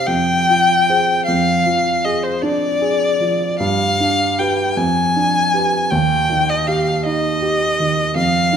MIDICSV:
0, 0, Header, 1, 3, 480
1, 0, Start_track
1, 0, Tempo, 781250
1, 774, Time_signature, 6, 3, 24, 8
1, 3160, Tempo, 749064
1, 5355, End_track
2, 0, Start_track
2, 0, Title_t, "Violin"
2, 0, Program_c, 0, 40
2, 37, Note_on_c, 0, 79, 100
2, 766, Note_off_c, 0, 79, 0
2, 769, Note_on_c, 0, 77, 89
2, 1255, Note_on_c, 0, 75, 75
2, 1264, Note_off_c, 0, 77, 0
2, 1372, Note_on_c, 0, 72, 67
2, 1381, Note_off_c, 0, 75, 0
2, 1484, Note_on_c, 0, 74, 84
2, 1493, Note_off_c, 0, 72, 0
2, 2200, Note_off_c, 0, 74, 0
2, 2205, Note_on_c, 0, 77, 98
2, 2696, Note_on_c, 0, 79, 73
2, 2705, Note_off_c, 0, 77, 0
2, 2929, Note_on_c, 0, 80, 87
2, 2938, Note_off_c, 0, 79, 0
2, 3649, Note_on_c, 0, 79, 88
2, 3658, Note_off_c, 0, 80, 0
2, 4024, Note_on_c, 0, 75, 81
2, 4033, Note_off_c, 0, 79, 0
2, 4139, Note_on_c, 0, 77, 72
2, 4148, Note_off_c, 0, 75, 0
2, 4376, Note_off_c, 0, 77, 0
2, 4384, Note_on_c, 0, 75, 91
2, 5079, Note_off_c, 0, 75, 0
2, 5097, Note_on_c, 0, 77, 92
2, 5355, Note_off_c, 0, 77, 0
2, 5355, End_track
3, 0, Start_track
3, 0, Title_t, "Grand piano"
3, 0, Program_c, 1, 0
3, 0, Control_c, 1, 64, 127
3, 45, Note_on_c, 1, 41, 57
3, 51, Control_c, 1, 64, 0
3, 177, Control_c, 1, 64, 127
3, 300, Note_on_c, 1, 65, 42
3, 549, Note_on_c, 1, 68, 38
3, 550, Note_on_c, 1, 72, 39
3, 684, Note_off_c, 1, 65, 0
3, 754, Note_off_c, 1, 41, 0
3, 759, Note_off_c, 1, 68, 0
3, 760, Note_off_c, 1, 72, 0
3, 783, Control_c, 1, 64, 0
3, 786, Note_on_c, 1, 41, 60
3, 898, Control_c, 1, 64, 127
3, 1019, Note_on_c, 1, 53, 45
3, 1260, Note_on_c, 1, 68, 50
3, 1391, Note_off_c, 1, 53, 0
3, 1490, Note_on_c, 1, 62, 53
3, 1629, Note_off_c, 1, 68, 0
3, 1730, Note_on_c, 1, 68, 49
3, 1865, Note_off_c, 1, 62, 0
3, 1968, Note_on_c, 1, 53, 41
3, 2107, Note_off_c, 1, 68, 0
3, 2180, Note_off_c, 1, 41, 0
3, 2204, Note_off_c, 1, 53, 0
3, 2210, Control_c, 1, 64, 0
3, 2212, Note_on_c, 1, 43, 64
3, 2310, Control_c, 1, 64, 127
3, 2458, Note_on_c, 1, 62, 44
3, 2699, Note_on_c, 1, 67, 42
3, 2703, Note_on_c, 1, 71, 46
3, 2838, Note_off_c, 1, 62, 0
3, 2908, Note_off_c, 1, 67, 0
3, 2910, Note_off_c, 1, 43, 0
3, 2910, Note_off_c, 1, 71, 0
3, 2928, Note_on_c, 1, 41, 60
3, 2934, Control_c, 1, 64, 0
3, 3024, Control_c, 1, 64, 127
3, 3171, Note_on_c, 1, 62, 45
3, 3413, Note_on_c, 1, 71, 37
3, 3414, Note_on_c, 1, 67, 36
3, 3554, Note_off_c, 1, 62, 0
3, 3626, Note_off_c, 1, 41, 0
3, 3627, Note_off_c, 1, 71, 0
3, 3628, Note_off_c, 1, 67, 0
3, 3654, Note_on_c, 1, 39, 65
3, 3658, Control_c, 1, 64, 0
3, 3767, Control_c, 1, 64, 127
3, 3898, Note_on_c, 1, 51, 45
3, 4141, Note_on_c, 1, 67, 51
3, 4281, Note_off_c, 1, 51, 0
3, 4381, Note_on_c, 1, 63, 50
3, 4521, Note_off_c, 1, 67, 0
3, 4617, Note_on_c, 1, 67, 47
3, 4761, Note_off_c, 1, 63, 0
3, 4860, Note_on_c, 1, 51, 37
3, 4996, Note_off_c, 1, 67, 0
3, 5066, Note_off_c, 1, 39, 0
3, 5087, Note_on_c, 1, 41, 61
3, 5092, Note_off_c, 1, 51, 0
3, 5097, Control_c, 1, 64, 0
3, 5211, Control_c, 1, 64, 127
3, 5325, Note_on_c, 1, 62, 43
3, 5355, Note_off_c, 1, 41, 0
3, 5355, Note_off_c, 1, 62, 0
3, 5355, End_track
0, 0, End_of_file